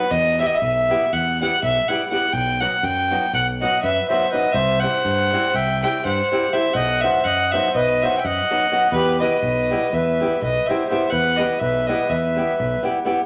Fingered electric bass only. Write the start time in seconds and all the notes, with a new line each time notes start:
0.11 E2
0.62 B1
1.13 E2
1.63 B1
2.33 B1
2.83 F#2
3.33 B1
3.83 F#2
4.54 C2
5.05 G2
5.54 C2
6.05 G2
6.75 B1
7.25 F#2
7.75 B1
8.25 F#2
8.92 E2
9.42 B1
9.93 E2
10.42 B1
11.12 E2
11.61 B1
12.10 E2
12.60 B1